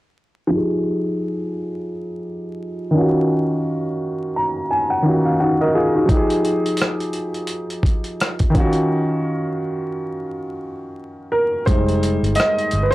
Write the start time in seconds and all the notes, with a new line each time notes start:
0.47 F3 D#4
0.54 G4 G#4
2.91 D#3 C#4
2.97 F4 F#4
4.36 A#5
4.70 G#5
4.90 F#5
5.02 D#3 C#4 F4
5.08 F#4
5.25 F5
5.40 D#4 F#4 F#5
5.61 F#4 A#4 D#5
5.75 F4 G#4
5.94 D#4 F#4
6.06 F3 D#4, kick, closed hi-hat
6.12 G4 G#4
6.30 closed hi-hat
6.45 closed hi-hat
6.66 closed hi-hat
6.77 closed hi-hat
6.82 cross-stick
7.00 closed hi-hat
7.13 closed hi-hat
7.34 closed hi-hat
7.47 closed hi-hat
7.70 closed hi-hat
7.83 kick, closed hi-hat
8.04 closed hi-hat
8.20 cross-stick, closed hi-hat
8.39 kick, closed hi-hat
8.50 D#3 C#4
8.55 F4, kick, closed hi-hat
8.60 F#4
8.73 closed hi-hat
11.32 A#4
11.66 F1 G3 G#3 D#4 C5, kick, closed hi-hat
11.88 closed hi-hat
12.03 closed hi-hat
12.23 G1, closed hi-hat
12.35 D#5, closed hi-hat
12.40 cross-stick
12.59 closed hi-hat
12.71 G1, closed hi-hat
12.83 B4
12.91 C5